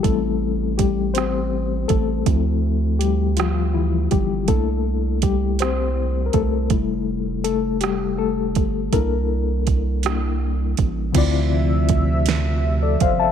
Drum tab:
CC |------|------|------|------|
HH |x-xx-x|x-xx-x|x-xx-x|x-xx-x|
SD |---r--|---r--|---r--|---r--|
BD |o-o--o|o----o|o-o--o|o----o|

CC |------|x-----|
HH |x-xx-x|x-xx-x|
SD |---r--|---o--|
BD |o-o--o|o-o--o|